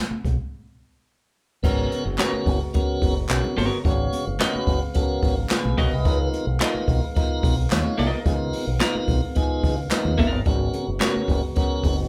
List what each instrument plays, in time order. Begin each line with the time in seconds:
0.11 muted fingered electric bass stroke, high conga
0.25 fingered electric bass B1, kick, closed hi-hat, muted conga, high conga, low conga
1.63 fingered electric bass G#1, tonewheel organ C#3 G#3 B3 C#4 F#4 A#4, kick, crash, muted conga
1.92 closed hi-hat, muted conga, high conga
2.05 fingered electric bass F#1
2.18 clean electric guitar B3 F#4 A#4 C#5, tonewheel organ B3 C#4 F#4, snare, clap, closed hi-hat
2.20 tonewheel organ A#4, clap
2.33 muted fingered electric bass stroke
2.46 fingered electric bass F#1, kick, open hi-hat, high conga, low conga
2.73 tonewheel organ A#3 C#4 F#4 A#4, kick, closed hi-hat
2.80 tonewheel organ B3
3.02 fingered electric bass F#1, kick, open hi-hat, high conga
3.29 fingered electric bass B1, tonewheel organ B3 C#4 F#4, snare, clap, closed hi-hat, muted conga
3.31 tonewheel organ A#4, clap
3.44 high conga, low conga
3.57 fingered electric bass G1, clean electric guitar B3 F#4 A#4 C#5, open hi-hat, muted conga, high conga
3.84 fingered electric bass G#1, tonewheel organ A#3 C#4 F#4 C#5 F5, kick, closed hi-hat, muted conga
3.90 tonewheel organ B3
4.13 closed hi-hat, high conga
4.27 fingered electric bass F#1
4.39 tonewheel organ B3 C#4 F#4 B4, clean electric guitar B3 F#4 A#4 D#5, snare, clap, closed hi-hat, muted conga
4.55 muted fingered electric bass stroke
4.67 fingered electric bass F#1, kick, open hi-hat, high conga, low conga
4.94 tonewheel organ B3 C#4 F#4 A4, kick, closed hi-hat
5.03 tonewheel organ A#4
5.23 fingered electric bass G#1, kick, open hi-hat, muted conga, high conga
5.50 tonewheel organ G#4 B4, snare, clap, closed hi-hat
5.64 fingered electric bass B1, high conga, low conga
5.78 fingered electric bass B1, clean electric guitar B3 F#4 A#4 D#5, tonewheel organ A#4 C#5, kick, open hi-hat, high conga
5.92 fingered electric bass C2, tonewheel organ B4 D#5
6.05 fingered electric bass C#2, tonewheel organ D#3 B3 D#4 F4 A#4, kick, closed hi-hat
6.33 closed hi-hat, high conga
6.47 fingered electric bass B1
6.60 tonewheel organ B3 D#4 F4 A4, clean electric guitar B3 F4 A#4 D#5, snare, clap, closed hi-hat
6.68 tonewheel organ A#4
6.75 muted fingered electric bass stroke
6.88 fingered electric bass B1, kick, open hi-hat, muted conga, high conga, low conga
7.15 tonewheel organ B3 D#4 F4 A#4, kick, closed hi-hat
7.43 fingered electric bass B1, kick, open hi-hat, muted conga, high conga
7.70 fingered electric bass D#2, tonewheel organ B3 D#4 F4 C#5, snare, clap, closed hi-hat
7.72 clap
7.84 high conga, low conga
7.98 fingered electric bass C2, clean electric guitar B3 F4 A#4 D#5, open hi-hat, high conga
8.25 fingered electric bass C#2, tonewheel organ B3 D#4 F4 G#4, kick, closed hi-hat, muted conga
8.33 tonewheel organ A#4
8.53 open hi-hat, muted conga, high conga
8.67 fingered electric bass B1
8.80 clean electric guitar B3 F4 A#4 F5, tonewheel organ B3 D#4 F4 A#4, snare, clap, closed hi-hat
8.95 muted fingered electric bass stroke, high conga
9.08 fingered electric bass B1, kick, open hi-hat, high conga, low conga
9.35 tonewheel organ B3 D#4 F4 G#4, kick, closed hi-hat, muted conga
9.63 fingered electric bass C#2, kick, open hi-hat, high conga
9.91 tonewheel organ B3 D#4 F4 A#4, snare, clap, closed hi-hat
10.05 fingered electric bass D#2, high conga, low conga
10.18 fingered electric bass F#1, clean electric guitar B3 F4 A#4 F5, kick, open hi-hat, muted conga, high conga
10.32 fingered electric bass G1
10.45 fingered electric bass G#1, tonewheel organ C#3 B3 C#4 F#4 A#4, kick, closed hi-hat, muted conga
10.73 closed hi-hat, high conga
10.88 fingered electric bass F#1
11.00 clean electric guitar B3 F#4 A#4 C#5, tonewheel organ B3 C#4 F#4 A#4, snare, clap, closed hi-hat
11.16 muted fingered electric bass stroke
11.28 fingered electric bass F#1, kick, open hi-hat, muted conga, high conga, low conga
11.56 tonewheel organ B3 C#4 F#4 A#4, kick, closed hi-hat, muted conga
11.84 fingered electric bass F#1, kick, open hi-hat, muted conga, high conga